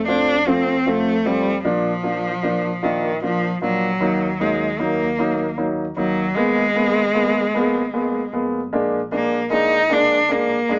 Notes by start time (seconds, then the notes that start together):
Already playing: F2
0.08 F3 A3 C4 D4
0.47 F3 A3 C4
0.86 F3 A3 C4
1.25 F1 F3 G3 A3 C4
1.64 A#1 F3 A#3 D4
2.03 F3 A#3 D4
2.43 F3 A#3 D4
2.83 D#3 F3 A#3 D4
3.22 F3 A#3 D4
3.61 A#1 F3 F#3 A#3 D4
4.00 D#2 F#3 A#3 D#4
4.40 F#3 G#3 A#3 D#4
4.79 F#3 A#3 D#4
5.18 F#3 A#3 D#4
5.58 F#3 A#3 D#4
5.97 D#2 F#3 A#3 D#4
6.35 G#1 G#3 A#3 B3
6.75 G#3 A#3 B3
7.14 G#3 A#3 B3
7.54 G#3 A#3 B3
7.94 G#3 A#3 B3
8.32 F1 G#3 A#3 B3
8.72 A#1 G#3 A#3 D4
9.12 G#3 A#3 D4
9.50 G#3 A#3 D4 D#4
9.90 G#3 A#3 D4
10.29 G#3 A#3 D4
10.69 F#1 G#3 A#3 D4